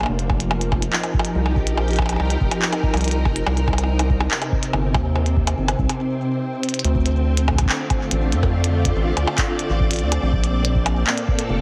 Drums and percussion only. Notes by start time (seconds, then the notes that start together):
0.01 percussion blips
0.03 percussion blips
0.06 percussion blips
0.19 closed hi-hat
0.30 kick, percussion blips
0.40 closed hi-hat
0.51 percussion blips
0.61 closed hi-hat
0.72 kick, percussion blips
0.82 closed hi-hat
0.93 clap
1.03 closed hi-hat, percussion blips
1.14 kick
1.19 percussion blips
1.25 closed hi-hat
1.46 percussion blips
1.56 kick
1.67 closed hi-hat
1.77 percussion blips
1.88 closed hi-hat
1.91 closed hi-hat
1.93 closed hi-hat
1.96 kick, closed hi-hat, percussion blips
2.02 percussion blips
2.06 closed hi-hat, percussion blips
2.09 percussion blips
2.13 percussion blips
2.16 percussion blips
2.20 percussion blips
2.30 closed hi-hat
2.41 kick
2.51 closed hi-hat, percussion blips
2.62 clap
2.73 closed hi-hat, percussion blips
2.83 kick
2.94 closed hi-hat, percussion blips
2.97 closed hi-hat
3.01 closed hi-hat
3.04 closed hi-hat
3.08 closed hi-hat
3.11 closed hi-hat
3.25 kick, percussion blips
3.36 closed hi-hat
3.46 percussion blips
3.57 closed hi-hat
3.68 kick, percussion blips
3.73 percussion blips
3.78 closed hi-hat, percussion blips
3.84 percussion blips
3.99 closed hi-hat, percussion blips
4.10 kick
4.20 percussion blips
4.31 clap
4.42 closed hi-hat, percussion blips
4.52 kick
4.63 closed hi-hat
4.73 percussion blips
4.94 kick, percussion blips
5.16 percussion blips
5.26 closed hi-hat
5.37 kick
5.47 closed hi-hat, percussion blips
5.68 closed hi-hat, percussion blips
5.79 kick
5.89 closed hi-hat, percussion blips
6.63 closed hi-hat
6.69 closed hi-hat
6.74 closed hi-hat
6.79 closed hi-hat
6.85 closed hi-hat
6.95 kick
7.06 closed hi-hat
7.37 closed hi-hat
7.48 kick, percussion blips
7.51 kick
7.55 kick
7.58 kick, closed hi-hat, percussion blips
7.62 kick
7.65 kick, clap
7.90 kick, closed hi-hat, percussion blips
8.11 closed hi-hat
8.32 closed hi-hat
8.43 kick, percussion blips
8.64 closed hi-hat
8.85 kick, closed hi-hat
9.17 closed hi-hat, percussion blips
9.27 percussion blips
9.38 kick, clap, closed hi-hat
9.59 closed hi-hat
9.80 kick
9.91 closed hi-hat
9.93 closed hi-hat
9.99 closed hi-hat
10.12 closed hi-hat, percussion blips
10.33 kick
10.44 closed hi-hat
10.65 closed hi-hat
10.75 kick
10.86 closed hi-hat, percussion blips
11.07 clap
11.18 closed hi-hat
11.28 kick
11.39 closed hi-hat